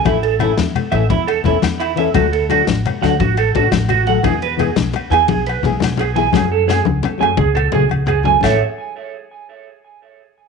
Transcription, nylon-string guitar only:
\new Staff \with { instrumentName = "Nylon-string guitar" } { \time 12/8 \key a \major \tempo 4. = 115 <e a cis' a'>8 r8 <e a cis' a'>8 r4 <e a cis' a'>8 r4 <e a cis' a'>8 r4 <e cis' a'>8 | <fis a d' a'>8 r8 <fis a d' a'>8 r4 <fis a d' a'>8 r4 <a d' a'>8 r4 <fis a a'>8 | <e b e' gis'>8 r8 <e b e' gis'>8 r4 <e b e' gis'>8 r4 <e b e' gis'>8 r4 <e b e' gis'>8 | <fis a cis' gis'>8 r8 <fis a cis' gis'>8 r4 <fis a cis' gis'>8 r4 <fis a cis' gis'>8 r4 <fis a cis'>8 |
<e a cis' a'>8 r1 r4. | }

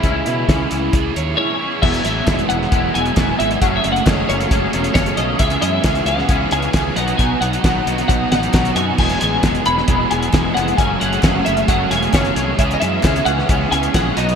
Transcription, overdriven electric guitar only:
\new Staff \with { instrumentName = "Overdriven electric guitar" } { \clef bass \time 4/4 \key e \major \tempo 4 = 134 <cis e' gis' cis''>8 e'8 cis'8 e'8 gis'8 cis''8 e'8 gis'8 | <e gis b e'>8 <e gis b e'>8 <e gis b e'>8 <e gis b e'>8 <e gis b e'>8 <e gis b e'>8 <e gis b e'>8 <e gis b e'>8 | <fis, cis fis a cis'>8 <fis, cis fis a cis'>8 <fis, cis fis a cis'>8 <fis, cis fis a cis'>8 <fis, cis fis a cis'>8 <fis, cis fis a cis'>8 <fis, cis fis a cis'>8 <fis, cis fis a cis'>8 | <cis e gis cis'>8 <cis e gis cis'>8 <cis e gis cis'>8 <cis e gis cis'>8 <cis e gis cis'>8 <cis e gis cis'>8 <cis e gis cis'>8 <b, fis b dis'>8 |
<b, fis b dis'>8 <b, fis b dis'>8 <b, fis b dis'>8 <b, fis b dis'>8 <b, fis b dis'>8 <b, fis b dis'>8 <b, fis b dis'>8 <b, fis b dis'>8 | <e gis b e'>8 <e gis b e'>8 <e gis b e'>8 <e gis b e'>8 <e gis b e'>8 <e gis b e'>8 <e gis b e'>8 <e gis b e'>8 | <fis, cis fis a cis'>8 <fis, cis fis a cis'>8 <fis, cis fis a cis'>8 <fis, cis fis a cis'>8 <fis, cis fis a cis'>8 <fis, cis fis a cis'>8 <fis, cis fis a cis'>8 <fis, cis fis a cis'>8 | <cis e gis cis'>8 <cis e gis cis'>8 <cis e gis cis'>8 <cis e gis cis'>8 <cis e gis cis'>8 <cis e gis cis'>8 <cis e gis cis'>8 <b, fis b dis'>8 | }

